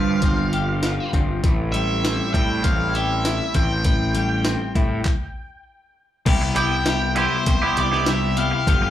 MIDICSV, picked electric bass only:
0, 0, Header, 1, 2, 480
1, 0, Start_track
1, 0, Tempo, 603015
1, 1145, Time_signature, 4, 2, 24, 8
1, 7085, End_track
2, 0, Start_track
2, 0, Title_t, "Picked electric bass"
2, 0, Program_c, 0, 34
2, 0, Note_on_c, 0, 43, 86
2, 137, Note_off_c, 0, 43, 0
2, 178, Note_on_c, 0, 31, 103
2, 780, Note_off_c, 0, 31, 0
2, 901, Note_on_c, 0, 31, 97
2, 1102, Note_off_c, 0, 31, 0
2, 1147, Note_on_c, 0, 33, 87
2, 1746, Note_off_c, 0, 33, 0
2, 1864, Note_on_c, 0, 45, 93
2, 2065, Note_off_c, 0, 45, 0
2, 2104, Note_on_c, 0, 33, 97
2, 2704, Note_off_c, 0, 33, 0
2, 2823, Note_on_c, 0, 33, 92
2, 3623, Note_off_c, 0, 33, 0
2, 3784, Note_on_c, 0, 45, 88
2, 3985, Note_off_c, 0, 45, 0
2, 4984, Note_on_c, 0, 36, 86
2, 5780, Note_off_c, 0, 36, 0
2, 5943, Note_on_c, 0, 36, 98
2, 6043, Note_off_c, 0, 36, 0
2, 6189, Note_on_c, 0, 36, 99
2, 6783, Note_off_c, 0, 36, 0
2, 6901, Note_on_c, 0, 31, 99
2, 7085, Note_off_c, 0, 31, 0
2, 7085, End_track
0, 0, End_of_file